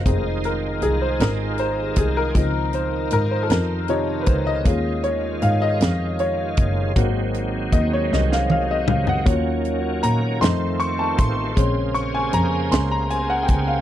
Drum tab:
HH |x-x-x-x-x-x-|x-x-x-x-x-x-|x-x-x-x-x-x-|x-x-x-------|
SD |------o-----|------o-----|------o-----|------oo----|
T1 |------------|------------|------------|--------o---|
T2 |------------|------------|------------|----------o-|
FT |------------|------------|------------|-----------o|
BD |o---------o-|o---------o-|o---------o-|o---o-------|

HH |x-x-x-x-x-x-|x-x-x-x-x-x-|
SD |------o-----|------o-----|
T1 |------------|------------|
T2 |------------|------------|
FT |------------|------------|
BD |o---------o-|o---------o-|